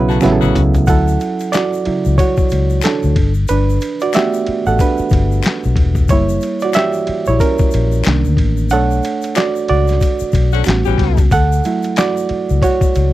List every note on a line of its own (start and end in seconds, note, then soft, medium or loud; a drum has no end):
0.00 0.18 B1 medium
0.00 0.21 C#3 loud
0.00 0.22 F#3 loud
0.00 0.23 B3 loud
0.00 0.24 E4 loud
0.00 0.24 A4 loud
0.00 0.24 B4 medium
0.00 0.24 B5 medium
0.09 0.20 D3 medium
0.09 0.20 C#4 medium
0.09 0.20 F#4 medium
0.09 0.22 A5 medium
0.09 closed hi-hat soft
0.09 shaker soft
0.21 0.40 A1 loud
0.21 0.84 C#3 medium
0.21 0.85 F#3 medium
0.21 0.85 B3 medium
0.21 0.86 E4 medium
0.21 0.41 F#5 medium
0.21 finger snap medium
0.21 closed hi-hat medium
0.21 shaker medium
0.26 0.32 G4 medium
0.26 snare medium
0.32 0.89 A4 loud
0.41 0.54 A1 medium
0.41 0.63 C#3 medium
0.41 0.62 B3 medium
0.41 0.62 F#4 medium
0.41 0.85 E5 medium
0.41 high tom medium
0.41 shaker soft
0.55 0.84 C#2 medium
0.55 closed hi-hat medium
0.55 mid tom loud
0.55 shaker soft
0.74 closed hi-hat soft
0.74 floor tom loud
0.74 shaker medium
0.87 1.16 D2 loud
0.87 1.34 F#3 medium
0.87 1.34 C#4 medium
0.87 1.34 E4 medium
0.87 1.50 A4 medium
0.87 1.55 F#5 loud
0.87 kick loud
0.87 ride medium
0.87 shaker medium
1.08 shaker medium
1.20 ride medium
1.20 shaker medium
1.40 ride soft
1.40 shaker soft
1.52 2.15 F#4 medium
1.52 2.20 D5 loud
1.52 finger snap medium
1.52 snare loud
1.52 clap medium
1.52 ride medium
1.52 shaker medium
1.73 shaker medium
1.85 2.15 C#3 soft
1.85 2.15 F#3 medium
1.85 2.15 E4 medium
1.85 muted fingered electric bass stroke soft
1.85 ride medium
2.05 2.17 C#2 medium
2.05 shaker medium
2.18 2.80 F#4 medium
2.18 2.85 C#5 loud
2.18 kick medium
2.18 ride medium
2.18 shaker medium
2.37 muted fingered electric bass stroke soft
2.37 kick loud
2.37 shaker medium
2.49 2.79 C#2 medium
2.49 ride medium
2.49 shaker soft
2.70 shaker soft
2.82 3.33 D4 medium
2.82 3.32 A4 medium
2.82 finger snap medium
2.82 ride medium
2.82 shaker medium
2.86 snare loud
2.86 clap loud
3.03 3.15 D2 medium
3.03 shaker soft
3.16 3.44 G1 loud
3.16 kick loud
3.16 ride medium
3.34 shaker soft
3.48 3.77 G1 loud
3.48 3.98 D4 medium
3.48 3.97 B4 loud
3.48 ride medium
3.48 shaker medium
3.69 shaker soft
3.80 ride medium
3.80 shaker medium
4.00 4.14 F#4 medium
4.00 4.15 D5 medium
4.00 ride soft
4.00 shaker soft
4.13 4.60 A3 medium
4.13 4.60 B3 medium
4.13 4.61 F#4 medium
4.13 4.63 G4 medium
4.13 4.68 E5 loud
4.13 finger snap medium
4.13 snare loud
4.13 clap medium
4.13 ride medium
4.13 shaker medium
4.34 shaker medium
4.46 muted fingered electric bass stroke soft
4.46 ride medium
4.66 4.78 A1 medium
4.66 4.79 A4 medium
4.66 4.80 F#5 loud
4.66 shaker medium
4.79 5.74 D4 medium
4.79 5.74 B4 medium
4.79 kick medium
4.79 ride medium
4.79 shaker medium
4.97 muted fingered electric bass stroke medium
4.97 shaker medium
5.10 5.39 G1 loud
5.10 kick loud
5.10 ride medium
5.10 shaker soft
5.31 shaker soft
5.43 finger snap medium
5.43 snare loud
5.43 ride medium
5.43 shaker medium
5.47 clap loud
5.64 5.78 B1 medium
5.64 shaker soft
5.76 6.10 E1 medium
5.76 kick medium
5.76 ride medium
5.95 kick loud
5.95 shaker soft
6.08 6.37 F#1 loud
6.08 6.56 G3 medium
6.08 6.56 A#3 medium
6.08 6.60 E4 medium
6.08 6.63 C#5 loud
6.08 kick loud
6.08 ride medium
6.08 shaker medium
6.29 shaker medium
6.41 ride medium
6.41 shaker medium
6.60 6.75 D5 medium
6.60 ride soft
6.60 shaker soft
6.65 6.75 F#4 medium
6.73 7.24 G4 medium
6.73 7.28 E5 loud
6.73 finger snap medium
6.73 snare loud
6.73 clap medium
6.73 ride medium
6.73 shaker medium
6.93 shaker medium
7.07 muted fingered electric bass stroke soft
7.07 ride medium
7.26 7.39 A#1 medium
7.26 7.35 E4 medium
7.26 7.33 C#5 loud
7.26 shaker soft
7.40 8.35 C#4 medium
7.40 8.34 A#4 medium
7.40 kick medium
7.40 ride medium
7.40 shaker medium
7.58 muted fingered electric bass stroke soft
7.58 kick loud
7.58 shaker medium
7.71 8.01 A#1 loud
7.71 ride medium
7.71 shaker soft
7.92 shaker soft
8.04 8.22 C2 loud
8.04 8.68 D#3 medium
8.04 8.68 A#3 medium
8.04 finger snap medium
8.04 snare loud
8.04 clap loud
8.04 ride medium
8.04 shaker medium
8.08 8.69 D4 medium
8.25 8.37 D2 loud
8.25 shaker soft
8.37 8.73 A1 medium
8.37 kick medium
8.37 ride medium
8.57 shaker soft
8.69 9.00 B1 loud
8.69 10.63 A3 medium
8.69 10.62 D4 medium
8.69 9.33 A4 medium
8.69 10.63 C#5 medium
8.69 9.38 F#5 loud
8.69 ride medium
8.69 shaker medium
8.91 shaker medium
9.03 ride medium
9.03 shaker soft
9.22 ride soft
9.22 shaker soft
9.35 9.66 F#4 medium
9.35 9.68 D5 loud
9.35 finger snap medium
9.35 snare loud
9.35 clap medium
9.35 ride medium
9.35 shaker medium
9.56 shaker medium
9.68 9.97 C#2 medium
9.68 10.63 F#4 medium
9.68 10.63 D5 medium
9.68 ride medium
9.87 snare soft
9.87 ride soft
9.87 shaker soft
10.01 kick medium
10.01 ride medium
10.01 shaker medium
10.19 muted fingered electric bass stroke soft
10.19 shaker medium
10.32 10.61 B1 medium
10.32 kick medium
10.32 ride medium
10.32 shaker soft
10.52 10.64 D3 medium
10.52 10.64 C#4 medium
10.52 10.64 F#4 medium
10.52 ride soft
10.52 shaker soft
10.64 10.83 A1 loud
10.64 11.12 G3 medium
10.64 11.12 B3 medium
10.64 11.12 C#4 medium
10.64 11.12 F#4 medium
10.64 finger snap medium
10.64 ride medium
10.64 shaker medium
10.69 snare loud
10.69 clap loud
10.85 10.98 A1 medium
10.85 11.25 E3 medium
10.85 11.25 C#4 medium
10.85 11.25 G4 medium
10.85 shaker soft
10.98 11.26 C#2 medium
10.98 kick medium
10.98 snare soft
10.98 ride medium
11.17 kick loud
11.17 ride soft
11.17 shaker soft
11.31 11.59 D2 loud
11.31 11.94 A4 medium
11.31 11.99 F#5 loud
11.31 kick loud
11.31 ride medium
11.31 shaker medium
11.52 shaker medium
11.64 13.13 F#3 medium
11.64 13.13 A3 medium
11.64 13.13 E4 medium
11.64 ride medium
11.64 shaker soft
11.82 ride soft
11.82 shaker soft
11.96 12.59 F#4 medium
11.96 12.64 D5 loud
11.96 finger snap medium
11.96 snare loud
11.96 clap medium
11.96 ride medium
11.96 shaker medium
12.17 shaker medium
12.29 muted fingered electric bass stroke soft
12.29 ride medium
12.49 12.61 C#2 medium
12.49 shaker soft
12.62 13.13 F#4 medium
12.62 13.13 C#5 loud
12.62 kick medium
12.62 ride medium
12.62 shaker medium
12.81 muted fingered electric bass stroke soft
12.81 kick loud
12.81 shaker medium
12.95 13.13 C#2 medium
12.95 ride medium
12.95 shaker soft